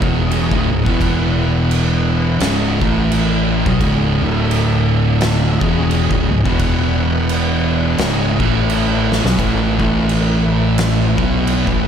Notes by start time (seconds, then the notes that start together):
0.01 E1 E2 B2 E3 C#4 G#4 D#5, kick
0.31 crash
0.50 D1 D2 A2, kick
0.71 C#1 C#2 G#2
0.85 E1 E2 B2 E3 E4 B4 F#5, kick
1.01 kick, crash
1.71 crash
2.40 C#1 C#2 G#2 C#3 C#4 G#4 D#5, snare, crash
2.81 A1 A2 E3 A3 E4 B4, kick
3.12 crash
3.66 B1 B2 F#3 C#4 G#4 D#5, kick
3.80 C#1 C#2 G#2 C#3, kick, crash
4.19 D1 D2 A2 D3 D4 A4 E5
4.51 crash
5.21 snare, crash
5.58 E1 E2 B2 E3 C#4 G#4 D#5, kick
5.91 crash
6.10 D1 D2 A2, kick
6.29 C#1 C#2 G#2
6.44 E1 E2 B2 E3 E4 B4 F#5, kick
6.59 kick, crash
7.29 crash
7.98 C#1 C#2 G#2 C#3 C#4 G#4 D#5, snare, crash
8.39 A1 A2 E3 A3 E4 B4, kick
8.70 crash
9.12 snare
9.21 B1 B2 F#3 C#4 G#4 D#5
9.26 snare
9.34 A2 A3 E4 B4
9.38 A1 E3 A3, kick, crash
9.78 A1 A2 E3 A3, kick
10.09 crash
10.78 snare, crash
11.17 B1 B2 F#3 B3, kick
11.47 crash
11.66 A1 A2 E3, kick